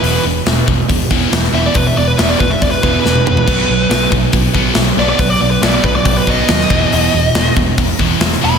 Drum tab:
CC |----------------|----------------|x---------------|----------------|
HH |o---o---o---o---|o---o---o-------|----o---o---o---|o---o---o---o---|
SD |----o-------oo--|----o-------o---|----o-------o---|----o-------oo--|
T1 |----------------|-------------o--|----------------|----------------|
T2 |----------------|--------------o-|----------------|----------------|
FT |----------------|---------------o|----------------|----------------|
BD |------o-o-o-----|o-----o-o-o-----|o-----o-o-o-----|o-----o-o-o---o-|

CC |----------------|
HH |o---o---o---o---|
SD |----o-------oo--|
T1 |----------------|
T2 |----------------|
FT |----------------|
BD |------o-o-o-----|